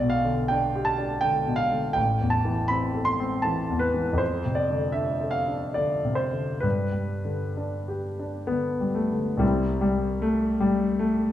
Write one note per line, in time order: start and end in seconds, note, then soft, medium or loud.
0.00 1.93 B1 soft
0.00 0.41 B2 soft
0.00 0.12 D5 medium
0.10 0.49 F5 medium
0.25 0.65 D3 soft
0.48 0.90 D4 soft
0.48 0.86 G5 medium
0.75 1.14 G4 soft
0.85 1.23 A5 medium
0.98 1.38 D4 soft
1.21 1.63 D3 soft
1.21 1.59 G5 medium
1.47 1.87 B2 soft
1.56 1.95 F5 medium
1.72 1.97 D3 soft
1.93 4.15 A1 soft
1.93 2.32 G5 medium
2.21 2.60 E2 soft
2.30 2.69 A5 medium
2.45 2.85 E3 soft
2.68 3.10 C4 soft
2.68 3.06 B5 medium
2.94 3.35 A4 soft
3.05 3.44 C6 medium
3.20 3.60 C4 soft
3.42 3.85 E3 soft
3.42 3.81 A5 medium
3.70 4.10 E2 soft
3.79 4.19 B4 medium
3.94 4.20 E3 soft
4.13 6.56 F2 soft
4.18 4.56 C5 soft
4.45 4.85 C3 soft
4.55 4.94 D5 medium
4.70 5.11 D3 soft
4.92 5.37 D4 soft
4.92 5.34 E5 soft
5.21 5.66 A4 soft
5.31 5.75 F5 medium
5.48 5.94 D4 soft
5.74 6.23 D3 soft
5.74 6.18 D5 soft
6.05 6.51 C3 soft
6.15 6.62 C5 soft
6.33 6.63 D3 soft
6.60 9.37 G2 soft
6.60 8.49 B4 soft
6.92 7.44 G3 soft
7.25 7.76 D3 soft
7.57 8.07 D4 soft
7.88 8.38 G4 soft
8.19 8.68 D4 soft
8.47 8.99 D3 soft
8.47 8.95 B3 soft
8.81 9.30 G3 soft
8.95 9.41 A3 soft
9.12 9.42 D3 soft
9.37 11.32 C2 soft
9.37 9.80 G3 medium
9.37 11.32 C4 soft
9.37 11.32 E4 soft
9.37 11.32 G4 soft
9.81 10.24 G3 medium
10.22 10.63 A3 medium
10.60 11.01 G3 medium
10.99 11.32 A3 medium